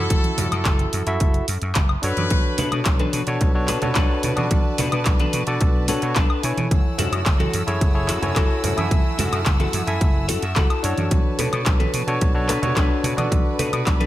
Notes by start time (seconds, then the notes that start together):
Already playing: E4 F#4 A4 E5
0.10 F#1, kick, closed hi-hat
0.24 closed hi-hat, high conga
0.38 F#2, open hi-hat, low conga
0.52 F#2, closed hi-hat, high woodblock
0.65 F#1, kick, clap, closed hi-hat
0.79 closed hi-hat, high conga
0.93 F#2, open hi-hat
1.07 F#2 E4 F#4 A4 E5, closed hi-hat
1.20 F#1, kick, closed hi-hat
1.34 closed hi-hat
1.48 F#2, open hi-hat
1.62 F#2, closed hi-hat
1.75 F#1, kick, clap, closed hi-hat
1.89 high woodblock
2.02 F#2 D4 F#4 A4 B4 C#5, open hi-hat
2.17 F#2, closed hi-hat, high conga
2.30 B1 B4 A5, kick, closed hi-hat
2.58 B2 D4 A4 B4, open hi-hat, low conga
2.72 B2, closed hi-hat, high woodblock
2.85 B1, kick, clap, closed hi-hat
2.99 D4 A4 B4, closed hi-hat, high conga
3.13 B2, open hi-hat
3.27 B2 D4 F#4 A4 C#5, closed hi-hat
3.41 B1, muted clean electric guitar stroke, kick, closed hi-hat
3.54 D4 F#4 A4 C#5
3.68 B2 D4 A4 B4, clap, open hi-hat
3.82 B2 D4 F#4 A4 C#5, closed hi-hat, low conga
3.95 B1 D4 A4 B4, kick, clap, closed hi-hat
4.23 B2, open hi-hat, low conga
4.36 B2 D4 F#4 A4 D5, closed hi-hat, high conga, high woodblock
4.51 B1, kick, closed hi-hat
4.78 B2 D4 A4 B4, open hi-hat, low conga
4.92 B2, closed hi-hat, high woodblock
5.05 B1, kick, clap, closed hi-hat
5.20 D4 A4 B4, closed hi-hat, high conga
5.33 B2, open hi-hat
5.47 B2 D4 F#4 A4 D5, closed hi-hat
5.61 B1, muted clean electric guitar stroke, kick, closed hi-hat
5.88 B2 D4 F#4 A4 B4 C#5, open hi-hat
6.02 B2 D4 F#4 A4 C#5, closed hi-hat
6.16 B1 D4 A4 B4, kick, clap, closed hi-hat
6.30 high woodblock
6.43 B2 E4 A4 C#5 G#5, open hi-hat
6.57 B2, closed hi-hat, high conga
6.71 F#1 A3 F#5 E6, kick, closed hi-hat
6.98 F#2 E4 F#4 A4, open hi-hat, low conga
7.12 F#2, closed hi-hat, high woodblock
7.26 F#1, kick, clap, closed hi-hat
7.40 E4 F#4 A4, closed hi-hat, high conga
7.54 F#2, open hi-hat
7.67 F#2 E4 G#4 A4 C#5, closed hi-hat
7.81 F#1, muted clean electric guitar stroke, kick, closed hi-hat
7.94 E4 G#4 A4 C#5
8.08 F#2 E4 F#4 A4, clap, open hi-hat
8.22 F#2 E4 A4 C#5 G#5, closed hi-hat, low conga
8.36 F#1 E4 F#4 A4, kick, clap, closed hi-hat
8.64 F#2, open hi-hat, low conga
8.77 F#2 E4 A4 E5 G#5, closed hi-hat, high conga, high woodblock
8.91 F#1, kick, closed hi-hat
9.18 F#2 E4 F#4 A4, open hi-hat, low conga
9.33 F#2, closed hi-hat, high woodblock
9.46 F#1, kick, clap, closed hi-hat
9.60 E4 F#4 A4, closed hi-hat, high conga
9.73 F#2, open hi-hat
9.87 F#2 E4 A4 E5 G#5, closed hi-hat
10.01 F#1, muted clean electric guitar stroke, kick, closed hi-hat
10.28 F#2 E4 F#4 A4 C#5, open hi-hat
10.42 F#2 E5, closed hi-hat
10.56 F#1 E4 F#4 A4 F#5, kick, clap, closed hi-hat
10.70 A5, closed hi-hat, high woodblock
10.83 F#2 D4 F#4 A4 C#5, open hi-hat
10.98 F#2, closed hi-hat, high conga
11.11 B1 B4 A5, kick, closed hi-hat
11.39 B2 D4 A4 B4, open hi-hat, low conga
11.53 B2, closed hi-hat, high woodblock
11.66 B1, kick, clap, closed hi-hat
11.80 D4 A4 B4, closed hi-hat, high conga
11.94 B2, open hi-hat
12.07 B2 D4 F#4 A4 C#5, closed hi-hat
12.21 B1, muted clean electric guitar stroke, kick, closed hi-hat
12.35 D4 F#4 A4 C#5
12.49 B2 D4 A4 B4, clap, open hi-hat
12.62 B2 D4 F#4 A4 C#5, closed hi-hat, low conga
12.76 B1 D4 A4 B4, kick, clap, closed hi-hat
13.04 B2, open hi-hat, low conga
13.17 B2 D4 F#4 A4 D5, closed hi-hat, high conga, high woodblock
13.32 B1 B5, kick, closed hi-hat
13.59 B2 D4 A4 B4, open hi-hat, low conga
13.73 B2, closed hi-hat, high woodblock
13.86 B1, kick, clap, closed hi-hat
14.00 D4 A4 B4, closed hi-hat, high conga